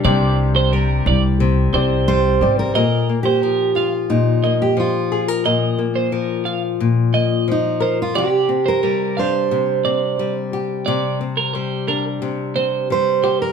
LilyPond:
<<
  \new Staff \with { instrumentName = "Clean electric guitar" } { \time 4/4 \key c \minor \tempo 4 = 89 d''8 r16 c''16 bes'8 d''16 r8. c''8. r8. | ees''8 r16 c''16 bes'8 f''16 r8. ees''8. r8. | ees''8 r16 c''16 bes'8 f''16 r8. ees''8 r8 c''16 r16 | d''8 r16 c''16 bes'8 f''16 r8. d''8. r8. |
d''8 r16 bes'16 c''8 bes'16 r8. c''8 r8 c''16 r16 | }
  \new Staff \with { instrumentName = "Steel-string acoustic guitar" } { \time 4/4 \key c \minor r2. c''8. bes'16 | bes'8. g'8. f'8 ees'8. g'16 f'8. r16 | r2. ees'8. f'16 | g'8. bes'8. c''2 r8 |
r2. c''8. bes'16 | }
  \new Staff \with { instrumentName = "Upright piano" } { \time 4/4 \key c \minor <c' g' d''>4. r4 <c' g' d''>8 r8 <c' g' d''>8 | r1 | r1 | r1 |
r1 | }
  \new Staff \with { instrumentName = "Nylon-string guitar" } { \time 4/4 \key c \minor c4 g4 c8 c'8 g8 c''8 | <bes, bes'>8 bes8 f8 f'8 bes,8 bes8 f8 aes'16 bes'16 | <bes, bes'>8 bes8 f8 f'8 bes,8 bes8 f8 bes'8 | <c g'>8 c'8 g8 d'8 c8 c'8 g8 g'8 |
<c g'>8 c'8 g8 d'8 c8 c'8 g8 g'8 | }
  \new Staff \with { instrumentName = "Upright bass" } { \clef bass \time 4/4 \key c \minor c,4. c,4 c,4 aes,,8 | r1 | r1 | r1 |
r1 | }
>>